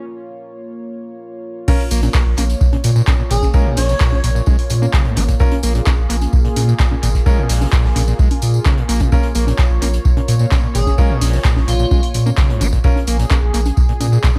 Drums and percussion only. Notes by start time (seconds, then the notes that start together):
1.68 kick, crash, tambourine, high conga
1.80 closed hi-hat
1.91 open hi-hat, tambourine
2.03 closed hi-hat, tambourine, high conga
2.13 kick, snare, clap, tambourine
2.37 open hi-hat, tambourine, high conga
2.50 closed hi-hat, tambourine
2.61 kick, tambourine
2.73 closed hi-hat, high conga
2.84 open hi-hat, tambourine
2.96 tambourine
3.07 kick, snare, clap, tambourine, high conga
3.31 open hi-hat, tambourine
3.42 kick, snare, tambourine, high conga
3.53 kick, tambourine
3.77 snare, open hi-hat, tambourine, high conga
3.89 snare, tambourine
4.00 kick, snare, clap, tambourine
4.12 snare, high conga
4.24 open hi-hat, tambourine
4.36 tambourine
4.46 kick, tambourine, high conga
4.59 open hi-hat
4.70 open hi-hat, tambourine
4.82 tambourine, high conga
4.93 kick, snare, clap, tambourine
5.05 closed hi-hat
5.16 open hi-hat, tambourine, high conga
5.28 kick, closed hi-hat, tambourine
5.39 kick, tambourine
5.51 closed hi-hat, high conga
5.63 open hi-hat, tambourine
5.75 closed hi-hat, tambourine
5.86 kick, snare, clap, tambourine, high conga
6.10 open hi-hat, tambourine
6.21 closed hi-hat, tambourine, high conga
6.33 kick, tambourine
6.45 closed hi-hat
6.56 open hi-hat, tambourine, high conga
6.69 tambourine
6.79 kick, snare, clap, tambourine
6.91 high conga
7.03 open hi-hat, tambourine
7.14 kick, snare, tambourine
7.26 kick, tambourine, high conga
7.49 snare, open hi-hat, tambourine
7.61 snare, tambourine, high conga
7.72 kick, snare, clap, tambourine
7.85 snare
7.96 open hi-hat, tambourine, high conga
8.08 tambourine
8.19 kick, tambourine
8.31 open hi-hat, high conga
8.42 open hi-hat, tambourine
8.54 tambourine
8.65 kick, snare, clap, tambourine, high conga
8.78 closed hi-hat
8.89 open hi-hat, tambourine
9.00 kick, closed hi-hat, tambourine, high conga
9.12 kick, tambourine, high conga
9.23 closed hi-hat
9.35 open hi-hat, tambourine
9.47 closed hi-hat, tambourine, high conga
9.57 kick, snare, clap, tambourine
9.59 tambourine
9.82 open hi-hat, tambourine, high conga
9.93 closed hi-hat, tambourine
10.05 kick, tambourine
10.17 closed hi-hat, high conga
10.28 open hi-hat, tambourine
10.30 tambourine
10.39 tambourine
10.51 kick, snare, clap, tambourine, high conga
10.75 open hi-hat, tambourine
10.86 kick, snare, tambourine, high conga
10.98 kick, tambourine
11.21 snare, open hi-hat, tambourine, high conga
11.33 snare, tambourine
11.44 kick, snare, clap, tambourine
11.56 snare, high conga
11.68 open hi-hat, tambourine
11.79 tambourine
11.91 kick, tambourine, high conga
12.03 open hi-hat
12.14 open hi-hat, tambourine
12.26 tambourine, high conga
12.37 kick, snare, clap, tambourine
12.50 closed hi-hat
12.61 open hi-hat, tambourine, high conga
12.73 kick, closed hi-hat, tambourine
12.84 kick, tambourine
12.96 closed hi-hat, high conga
13.07 open hi-hat, tambourine
13.19 closed hi-hat, tambourine
13.30 kick, snare, clap, tambourine, high conga
13.54 open hi-hat, tambourine
13.65 closed hi-hat, tambourine, high conga
13.77 kick, tambourine
13.89 closed hi-hat
14.01 open hi-hat, tambourine, high conga
14.13 tambourine
14.23 kick, snare, clap, tambourine
14.36 high conga